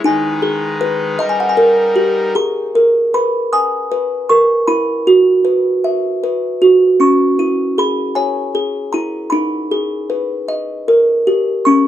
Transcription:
0, 0, Header, 1, 3, 480
1, 0, Start_track
1, 0, Key_signature, 5, "minor"
1, 0, Tempo, 775194
1, 25, Time_signature, 6, 3, 24, 8
1, 7354, End_track
2, 0, Start_track
2, 0, Title_t, "Music box"
2, 0, Program_c, 0, 10
2, 27, Note_on_c, 0, 63, 87
2, 34, Note_on_c, 0, 80, 63
2, 262, Note_on_c, 0, 68, 66
2, 500, Note_on_c, 0, 71, 71
2, 728, Note_off_c, 0, 80, 0
2, 736, Note_off_c, 0, 63, 0
2, 736, Note_off_c, 0, 68, 0
2, 736, Note_on_c, 0, 75, 80
2, 737, Note_off_c, 0, 71, 0
2, 745, Note_on_c, 0, 82, 52
2, 800, Note_on_c, 0, 80, 54
2, 803, Note_off_c, 0, 82, 0
2, 859, Note_off_c, 0, 80, 0
2, 868, Note_on_c, 0, 78, 60
2, 921, Note_off_c, 0, 78, 0
2, 924, Note_on_c, 0, 80, 57
2, 973, Note_on_c, 0, 70, 69
2, 978, Note_off_c, 0, 80, 0
2, 1212, Note_on_c, 0, 67, 64
2, 1456, Note_off_c, 0, 67, 0
2, 1457, Note_off_c, 0, 70, 0
2, 1457, Note_on_c, 0, 68, 63
2, 1458, Note_off_c, 0, 75, 0
2, 1461, Note_on_c, 0, 82, 66
2, 1705, Note_on_c, 0, 70, 59
2, 1945, Note_on_c, 0, 71, 58
2, 1946, Note_on_c, 0, 83, 66
2, 1958, Note_off_c, 0, 82, 0
2, 2054, Note_off_c, 0, 83, 0
2, 2183, Note_on_c, 0, 87, 87
2, 2186, Note_on_c, 0, 80, 67
2, 2417, Note_off_c, 0, 71, 0
2, 2423, Note_off_c, 0, 68, 0
2, 2424, Note_on_c, 0, 71, 63
2, 2655, Note_off_c, 0, 70, 0
2, 2659, Note_on_c, 0, 85, 70
2, 2663, Note_on_c, 0, 70, 54
2, 2679, Note_off_c, 0, 87, 0
2, 2769, Note_off_c, 0, 85, 0
2, 2895, Note_on_c, 0, 83, 62
2, 2896, Note_on_c, 0, 64, 72
2, 2904, Note_off_c, 0, 70, 0
2, 2906, Note_off_c, 0, 71, 0
2, 2907, Note_off_c, 0, 80, 0
2, 3140, Note_on_c, 0, 66, 65
2, 3373, Note_on_c, 0, 71, 68
2, 3414, Note_off_c, 0, 83, 0
2, 3618, Note_on_c, 0, 76, 69
2, 3854, Note_off_c, 0, 71, 0
2, 3856, Note_off_c, 0, 64, 0
2, 3861, Note_on_c, 0, 71, 65
2, 4090, Note_off_c, 0, 66, 0
2, 4097, Note_on_c, 0, 66, 62
2, 4333, Note_on_c, 0, 61, 64
2, 4336, Note_off_c, 0, 76, 0
2, 4337, Note_off_c, 0, 66, 0
2, 4338, Note_off_c, 0, 71, 0
2, 4338, Note_on_c, 0, 85, 84
2, 4576, Note_on_c, 0, 64, 60
2, 4793, Note_off_c, 0, 85, 0
2, 4818, Note_on_c, 0, 68, 67
2, 4824, Note_on_c, 0, 83, 72
2, 5048, Note_on_c, 0, 80, 68
2, 5053, Note_on_c, 0, 73, 67
2, 5067, Note_off_c, 0, 83, 0
2, 5285, Note_off_c, 0, 68, 0
2, 5293, Note_on_c, 0, 68, 64
2, 5294, Note_off_c, 0, 61, 0
2, 5527, Note_on_c, 0, 82, 74
2, 5528, Note_off_c, 0, 64, 0
2, 5535, Note_on_c, 0, 64, 57
2, 5546, Note_off_c, 0, 80, 0
2, 5753, Note_off_c, 0, 82, 0
2, 5758, Note_on_c, 0, 83, 63
2, 5772, Note_off_c, 0, 68, 0
2, 5772, Note_off_c, 0, 73, 0
2, 5773, Note_on_c, 0, 63, 63
2, 5774, Note_off_c, 0, 64, 0
2, 6015, Note_on_c, 0, 68, 57
2, 6252, Note_on_c, 0, 71, 57
2, 6282, Note_off_c, 0, 83, 0
2, 6492, Note_on_c, 0, 75, 60
2, 6496, Note_off_c, 0, 63, 0
2, 6496, Note_off_c, 0, 71, 0
2, 6498, Note_off_c, 0, 68, 0
2, 6738, Note_on_c, 0, 70, 65
2, 6979, Note_on_c, 0, 67, 58
2, 7214, Note_on_c, 0, 85, 65
2, 7222, Note_off_c, 0, 75, 0
2, 7223, Note_off_c, 0, 67, 0
2, 7223, Note_on_c, 0, 61, 70
2, 7224, Note_off_c, 0, 70, 0
2, 7354, Note_off_c, 0, 61, 0
2, 7354, Note_off_c, 0, 85, 0
2, 7354, End_track
3, 0, Start_track
3, 0, Title_t, "Pipe organ"
3, 0, Program_c, 1, 19
3, 28, Note_on_c, 1, 51, 60
3, 32, Note_on_c, 1, 71, 58
3, 33, Note_on_c, 1, 63, 49
3, 35, Note_on_c, 1, 56, 56
3, 730, Note_off_c, 1, 51, 0
3, 732, Note_off_c, 1, 71, 0
3, 733, Note_off_c, 1, 56, 0
3, 738, Note_on_c, 1, 70, 74
3, 742, Note_on_c, 1, 55, 62
3, 1447, Note_off_c, 1, 63, 0
3, 1452, Note_off_c, 1, 70, 0
3, 1454, Note_off_c, 1, 55, 0
3, 7354, End_track
0, 0, End_of_file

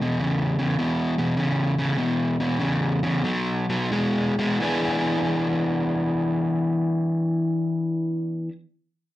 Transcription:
0, 0, Header, 1, 2, 480
1, 0, Start_track
1, 0, Tempo, 591133
1, 1604, Time_signature, 4, 2, 24, 8
1, 1604, Tempo, 634249
1, 2564, Tempo, 685714
1, 3524, Tempo, 718563
1, 6555, End_track
2, 0, Start_track
2, 0, Title_t, "Overdriven electric guitar"
2, 0, Program_c, 0, 29
2, 12, Note_on_c, 0, 40, 70
2, 17, Note_on_c, 0, 47, 90
2, 146, Note_off_c, 0, 40, 0
2, 149, Note_off_c, 0, 47, 0
2, 159, Note_on_c, 0, 40, 79
2, 167, Note_on_c, 0, 49, 82
2, 445, Note_off_c, 0, 40, 0
2, 449, Note_off_c, 0, 49, 0
2, 477, Note_on_c, 0, 40, 73
2, 478, Note_on_c, 0, 49, 83
2, 615, Note_off_c, 0, 40, 0
2, 616, Note_off_c, 0, 49, 0
2, 640, Note_on_c, 0, 40, 77
2, 640, Note_on_c, 0, 47, 88
2, 926, Note_off_c, 0, 47, 0
2, 927, Note_off_c, 0, 40, 0
2, 960, Note_on_c, 0, 40, 80
2, 965, Note_on_c, 0, 47, 88
2, 1099, Note_off_c, 0, 40, 0
2, 1101, Note_off_c, 0, 47, 0
2, 1112, Note_on_c, 0, 40, 78
2, 1116, Note_on_c, 0, 49, 98
2, 1410, Note_off_c, 0, 40, 0
2, 1411, Note_off_c, 0, 49, 0
2, 1449, Note_on_c, 0, 40, 77
2, 1454, Note_on_c, 0, 49, 95
2, 1590, Note_off_c, 0, 40, 0
2, 1593, Note_off_c, 0, 49, 0
2, 1603, Note_on_c, 0, 40, 58
2, 1608, Note_on_c, 0, 47, 70
2, 1889, Note_off_c, 0, 40, 0
2, 1891, Note_off_c, 0, 47, 0
2, 1926, Note_on_c, 0, 40, 81
2, 1929, Note_on_c, 0, 47, 89
2, 2062, Note_off_c, 0, 40, 0
2, 2064, Note_off_c, 0, 47, 0
2, 2072, Note_on_c, 0, 40, 72
2, 2078, Note_on_c, 0, 49, 86
2, 2369, Note_off_c, 0, 40, 0
2, 2371, Note_off_c, 0, 49, 0
2, 2402, Note_on_c, 0, 40, 76
2, 2404, Note_on_c, 0, 49, 79
2, 2547, Note_off_c, 0, 40, 0
2, 2548, Note_off_c, 0, 49, 0
2, 2561, Note_on_c, 0, 47, 74
2, 2567, Note_on_c, 0, 54, 89
2, 2846, Note_off_c, 0, 47, 0
2, 2849, Note_off_c, 0, 54, 0
2, 2881, Note_on_c, 0, 47, 78
2, 2883, Note_on_c, 0, 54, 87
2, 3019, Note_off_c, 0, 47, 0
2, 3020, Note_off_c, 0, 54, 0
2, 3035, Note_on_c, 0, 47, 79
2, 3037, Note_on_c, 0, 56, 84
2, 3330, Note_off_c, 0, 47, 0
2, 3331, Note_off_c, 0, 56, 0
2, 3364, Note_on_c, 0, 47, 75
2, 3367, Note_on_c, 0, 56, 87
2, 3509, Note_off_c, 0, 47, 0
2, 3510, Note_off_c, 0, 56, 0
2, 3514, Note_on_c, 0, 52, 80
2, 3527, Note_on_c, 0, 59, 78
2, 3534, Note_on_c, 0, 62, 81
2, 3542, Note_on_c, 0, 68, 84
2, 6108, Note_off_c, 0, 52, 0
2, 6120, Note_off_c, 0, 59, 0
2, 6127, Note_off_c, 0, 62, 0
2, 6134, Note_off_c, 0, 68, 0
2, 6555, End_track
0, 0, End_of_file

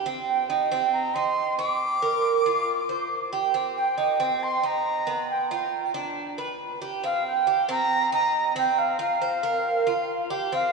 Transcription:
0, 0, Header, 1, 3, 480
1, 0, Start_track
1, 0, Key_signature, -3, "minor"
1, 0, Tempo, 436047
1, 63, Time_signature, 4, 2, 24, 8
1, 11803, End_track
2, 0, Start_track
2, 0, Title_t, "Flute"
2, 0, Program_c, 0, 73
2, 308, Note_on_c, 0, 79, 81
2, 982, Note_off_c, 0, 79, 0
2, 1022, Note_on_c, 0, 82, 86
2, 1260, Note_on_c, 0, 84, 97
2, 1276, Note_off_c, 0, 82, 0
2, 1736, Note_off_c, 0, 84, 0
2, 1743, Note_on_c, 0, 86, 107
2, 3620, Note_off_c, 0, 86, 0
2, 4153, Note_on_c, 0, 79, 88
2, 4881, Note_on_c, 0, 84, 92
2, 4898, Note_off_c, 0, 79, 0
2, 5127, Note_on_c, 0, 82, 99
2, 5143, Note_off_c, 0, 84, 0
2, 5835, Note_off_c, 0, 82, 0
2, 5842, Note_on_c, 0, 79, 85
2, 6057, Note_off_c, 0, 79, 0
2, 6083, Note_on_c, 0, 79, 72
2, 6520, Note_off_c, 0, 79, 0
2, 7753, Note_on_c, 0, 77, 93
2, 7972, Note_off_c, 0, 77, 0
2, 7997, Note_on_c, 0, 79, 94
2, 8437, Note_off_c, 0, 79, 0
2, 8481, Note_on_c, 0, 82, 115
2, 8918, Note_off_c, 0, 82, 0
2, 8958, Note_on_c, 0, 82, 106
2, 9397, Note_off_c, 0, 82, 0
2, 9440, Note_on_c, 0, 79, 100
2, 9673, Note_on_c, 0, 77, 91
2, 9689, Note_off_c, 0, 79, 0
2, 9907, Note_off_c, 0, 77, 0
2, 9916, Note_on_c, 0, 77, 87
2, 11304, Note_off_c, 0, 77, 0
2, 11606, Note_on_c, 0, 77, 96
2, 11803, Note_off_c, 0, 77, 0
2, 11803, End_track
3, 0, Start_track
3, 0, Title_t, "Cuban tres"
3, 0, Program_c, 1, 25
3, 65, Note_on_c, 1, 60, 73
3, 530, Note_off_c, 1, 60, 0
3, 546, Note_on_c, 1, 63, 62
3, 777, Note_off_c, 1, 63, 0
3, 787, Note_on_c, 1, 60, 80
3, 1251, Note_off_c, 1, 60, 0
3, 1273, Note_on_c, 1, 63, 62
3, 1734, Note_off_c, 1, 63, 0
3, 1747, Note_on_c, 1, 60, 76
3, 2211, Note_off_c, 1, 60, 0
3, 2228, Note_on_c, 1, 70, 70
3, 2692, Note_off_c, 1, 70, 0
3, 2707, Note_on_c, 1, 65, 75
3, 3171, Note_off_c, 1, 65, 0
3, 3183, Note_on_c, 1, 72, 65
3, 3649, Note_off_c, 1, 72, 0
3, 3661, Note_on_c, 1, 67, 71
3, 3896, Note_off_c, 1, 67, 0
3, 3898, Note_on_c, 1, 60, 66
3, 4367, Note_off_c, 1, 60, 0
3, 4377, Note_on_c, 1, 63, 63
3, 4613, Note_off_c, 1, 63, 0
3, 4621, Note_on_c, 1, 60, 83
3, 5088, Note_off_c, 1, 60, 0
3, 5101, Note_on_c, 1, 63, 64
3, 5568, Note_off_c, 1, 63, 0
3, 5579, Note_on_c, 1, 59, 79
3, 6047, Note_off_c, 1, 59, 0
3, 6066, Note_on_c, 1, 65, 72
3, 6530, Note_off_c, 1, 65, 0
3, 6542, Note_on_c, 1, 62, 73
3, 7008, Note_off_c, 1, 62, 0
3, 7024, Note_on_c, 1, 71, 67
3, 7489, Note_off_c, 1, 71, 0
3, 7503, Note_on_c, 1, 67, 69
3, 7736, Note_off_c, 1, 67, 0
3, 7744, Note_on_c, 1, 60, 72
3, 8209, Note_off_c, 1, 60, 0
3, 8223, Note_on_c, 1, 67, 68
3, 8456, Note_off_c, 1, 67, 0
3, 8461, Note_on_c, 1, 60, 84
3, 8927, Note_off_c, 1, 60, 0
3, 8943, Note_on_c, 1, 63, 68
3, 9408, Note_off_c, 1, 63, 0
3, 9421, Note_on_c, 1, 60, 85
3, 9887, Note_off_c, 1, 60, 0
3, 9897, Note_on_c, 1, 65, 80
3, 10132, Note_off_c, 1, 65, 0
3, 10144, Note_on_c, 1, 72, 71
3, 10376, Note_off_c, 1, 72, 0
3, 10383, Note_on_c, 1, 70, 75
3, 10848, Note_off_c, 1, 70, 0
3, 10862, Note_on_c, 1, 65, 71
3, 11327, Note_off_c, 1, 65, 0
3, 11342, Note_on_c, 1, 67, 81
3, 11574, Note_off_c, 1, 67, 0
3, 11585, Note_on_c, 1, 60, 71
3, 11803, Note_off_c, 1, 60, 0
3, 11803, End_track
0, 0, End_of_file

